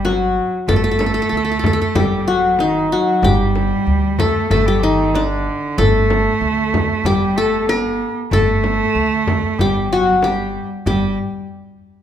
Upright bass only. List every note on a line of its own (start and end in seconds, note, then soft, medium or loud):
0.00 0.38 G1 medium
0.68 1.17 G1 medium
1.32 1.81 D2 medium
1.95 2.92 G1 medium
3.22 3.71 G1 medium
3.87 4.35 D2 medium
4.51 5.48 G1 medium
5.78 6.26 G1 loud
6.41 6.89 D2 medium
7.04 8.01 G1 medium
8.31 8.80 G1 medium
8.95 9.44 D2 medium
9.59 10.56 G1 medium
10.86 11.16 G1 medium